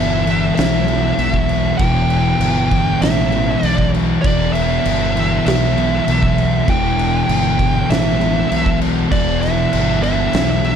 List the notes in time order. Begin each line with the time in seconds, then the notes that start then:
Already playing: G1 E2 B2 E3 E5
0.26 E2 B2 E3, crash
0.55 B1 E5, snare, crash
0.86 E2 B2 E3, crash
1.17 B1 E2 B2 E3, crash
1.34 kick
1.49 crash
1.77 E1 E2 B2 G5, kick, crash
1.81 E3
2.10 crash
2.40 G1, crash
2.70 E2 B2 E3, kick, crash
3.01 A1 E5, snare, crash
3.31 B2 E3, crash
3.36 E2
3.62 B1 E2 B2 D5, crash
3.66 E3
3.78 kick
3.94 crash
4.22 E1 E2 D5, kick, crash
4.26 B2 E3
4.53 E5, crash
4.85 G1, crash
5.16 E2 B2 E3, crash
5.46 B1 E5, snare, crash
5.75 E2 B2 E3, crash
6.05 B1 E2 B2 E3, crash
6.23 kick
6.38 crash
6.65 E1 E2 B2, kick, crash
6.69 E3 G5
6.99 crash
7.29 G1, crash
7.58 E2 B2 E3, kick, crash
7.89 A1 E5, snare, crash
8.19 E2 B2 E3, crash
8.49 B1 E2 B2 E3, crash
8.66 kick
8.81 crash
9.10 E1 E2 B2 E3 D5, kick, crash
9.41 E5, snare, crash
9.73 G1, crash
10.01 E2 B2 E3 E5, crash
10.33 B1, snare, crash
10.62 E2 B2 E3, crash